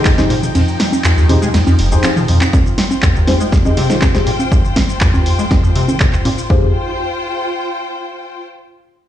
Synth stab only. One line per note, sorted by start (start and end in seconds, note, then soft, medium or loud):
0.18 0.37 D#4 medium
0.18 0.37 G4 medium
0.18 0.37 G#4 medium
0.18 0.37 C5 loud
1.29 1.48 D#4 medium
1.29 1.48 G4 medium
1.29 1.48 G#4 medium
1.29 1.48 C5 loud
1.92 2.10 D#4 loud
1.92 2.10 G4 medium
1.92 2.10 G#4 medium
1.92 2.10 C5 loud
3.28 3.47 D#4 medium
3.28 3.47 G4 medium
3.28 3.47 G#4 medium
3.28 3.47 C5 loud
3.65 3.77 D#4 medium
3.65 3.77 G4 medium
3.65 3.77 G#4 medium
3.65 3.77 D#5 medium
3.90 4.01 D#4 medium
3.90 4.01 G4 medium
3.90 4.01 G#4 medium
3.90 4.01 C5 loud
4.15 4.33 D#4 medium
4.15 4.33 G4 medium
4.15 4.33 G#4 medium
4.15 4.33 C5 medium
5.26 5.45 D#4 medium
5.26 5.45 G4 medium
5.26 5.45 G#4 medium
5.26 5.45 C5 loud
5.88 6.00 D#4 loud
5.88 6.00 G4 medium
5.88 6.00 G#4 medium
5.88 6.00 C5 loud
6.25 6.49 D#4 medium
6.25 6.49 G4 medium
6.25 6.49 G#4 medium
6.25 6.75 F5 medium
6.50 6.69 D#4 medium
6.50 6.69 G4 medium
6.50 6.69 G#4 medium
6.50 6.69 C5 loud